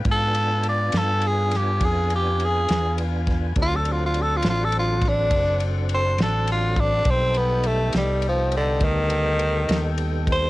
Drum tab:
RD |xxxxxxxxxxxx|xxxxxxxxxxxx|xxxxxxxxxxxx|
SD |---o-o---o-o|---o-o---o--|---o-----o--|
BD |o-----o----o|o----oo----o|o-----o----o|